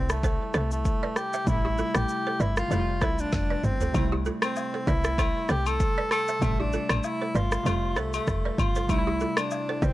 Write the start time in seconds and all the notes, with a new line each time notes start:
Already playing: C2 C3 G3 A3 C4 E4
0.09 A3, cross-stick, shaker
0.23 A4 C5, kick, shaker
0.54 C2 A3 A4 C5, cross-stick, shaker
0.71 A3, shaker
0.85 kick, shaker
1.03 B4 D5
1.16 G4, cross-stick, shaker
1.33 C5 E5, shaker
1.44 A1 C3 G3 A3 E4, kick, shaker
1.50 E4
1.65 E4 G4
1.78 F4 A4, shaker
1.95 A1 G4, cross-stick, shaker
2.09 shaker
2.27 A4 C5
2.40 G1 E4 B4 D5, shaker
2.57 F4, cross-stick, shaker
2.68 F1 C3 G3 A3 C5, shaker
2.72 E4 A4
2.80 F4
3.01 C2 E4 A4 C5, kick, cross-stick, shaker
3.19 D4, shaker
3.32 F1, kick, snare, shaker
3.50 B4 D5
3.63 G1 C4, mid tom, shaker
3.81 A4 C5, floor tom, shaker
3.92 C2 C3 G3 A3, kick, high agogo, shaker
3.97 E4
4.12 E4 G4
4.25 F4 A4, shaker
4.42 C4, cross-stick, high agogo, shaker
4.56 low woodblock, shaker
4.74 A4 C5
4.87 C2 E4 B4 D5, kick, shaker
5.04 cross-stick, shaker
5.18 A4 C5, kick, high agogo, shaker
5.49 C2 G4 A4 C5, cross-stick, shaker
5.66 A4, high agogo, shaker
5.80 kick, shaker
5.98 B4 D5
6.11 A4, cross-stick, high agogo, shaker
6.28 C5 E5, shaker
6.39 A1 C3 G3 A3, kick, high agogo, shaker
6.44 E5
6.60 D4 E4 G4
6.73 F4 A4, shaker
6.89 A1, cross-stick, high agogo, shaker
7.03 E4, low woodblock, shaker
7.22 A4 C5
7.35 G1 F4 B4 D5, shaker
7.52 cross-stick, shaker
7.63 F1 C3 G3 A3 C5, high agogo, shaker
7.67 F4 A4
7.96 C2 A3 A4 C5, cross-stick, shaker
8.14 A3, high agogo, shaker
8.27 F1, kick, cross-stick, shaker
8.45 B4 D5
8.58 G1 F4, kick, high agogo, shaker
8.75 A4 C5, shaker
8.87 C2 C3 G3 A3 E4, kick, high agogo, shaker
8.92 D#4
8.98 E4
9.07 E4 G4
9.20 F4 A4, shaker
9.37 D4, cross-stick, high agogo, shaker
9.51 low woodblock, shaker
9.69 A4 C5
9.82 C2 C4 B4 D5, kick, shaker